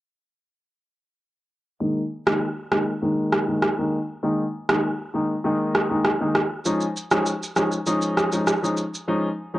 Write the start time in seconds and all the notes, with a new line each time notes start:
1.80 D#3 G#3 A#3 D#4
2.26 D#3 G#3 A#3 D#4, cross-stick
2.71 D#3 G#3 A#3 D#4, cross-stick
3.02 D#3 G#3 A#3 D#4
3.32 cross-stick
3.48 D#3 G#3 A#3 D#4
3.62 cross-stick
3.78 D#3 G#3 A#3 D#4
4.23 D#3 G#3 A#3 D#4
4.69 D#3 G#3 A#3 D#4, cross-stick
5.14 D#3 G#3 A#3 D#4
5.44 D#3 G#3 A#3 D#4
5.75 cross-stick
5.90 D#3 G#3 A#3 D#4
6.05 cross-stick
6.20 D#3 G#3 A#3 D#4
6.35 cross-stick
6.65 F3 G#3 C#4 D#4, shaker
6.81 shaker
6.97 shaker
7.11 F3 G#3 C#4 D#4, cross-stick, shaker
7.26 shaker
7.43 shaker
7.56 F3 G#3 C#4 D#4, cross-stick, shaker
7.72 shaker
7.86 F3 G#3 C#4 D#4, shaker
8.02 shaker
8.17 cross-stick, shaker
8.32 F3 G#3 C#4 D#4, shaker
8.47 cross-stick, shaker
8.63 F3 G#3 C#4 D#4, shaker
8.77 shaker
8.95 shaker
9.08 F3 G#3 C#4 D#4
9.54 F3 G#3 C#4 D#4